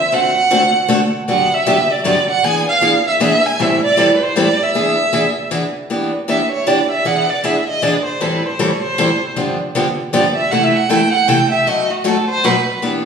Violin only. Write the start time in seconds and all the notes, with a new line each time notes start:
Already playing: E5
0.14 F#5
1.30 F#5
1.54 E5
1.92 D5
2.06 D5
2.31 F#5
2.44 G#5
2.69 F5
3.07 E5
3.23 E5
3.46 G#5
3.62 E5
3.84 D5
4.16 B4
4.23 C5
4.39 D5
4.63 E5
6.29 E5
6.52 C#5
6.68 D5
6.91 E5
7.07 F#5
7.30 D5
7.45 E5
7.69 D#5
7.83 D5
8.05 C5
8.21 B4
8.46 C5
8.60 C#5
8.83 C5
10.14 D5
10.36 E5
10.51 F#5
10.64 E5
10.76 F#5
10.90 G5
11.13 F#5
11.28 G5
11.52 E5
11.67 D#5
11.90 F#4
12.07 A4
12.29 C5
12.45 B4